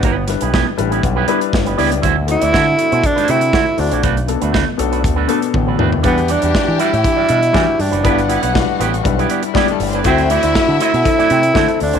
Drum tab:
HH |x-xx--xxx-xx-xox|x-xx--xxxxxx--ox|xxxx--xxx-xx----|xxxx--xxx-xx--ox|
SD |--o-o-------o---|----o-------o---|----o-----------|----o-------o---|
T1 |----------------|----------------|------------o---|----------------|
T2 |----------------|----------------|--------------o-|----------------|
FT |----------------|----------------|---------------o|----------------|
BD |o---o---o---o---|o---o---o---o---|o---o---o---o---|o---o---o---o---|

HH |xxxx--xxxxxx-xox|xxxx--xxxxxx-xox|
SD |----o-------o---|----o-------o---|
T1 |----------------|----------------|
T2 |----------------|----------------|
FT |----------------|----------------|
BD |o---o---o---o---|o---o---o---o---|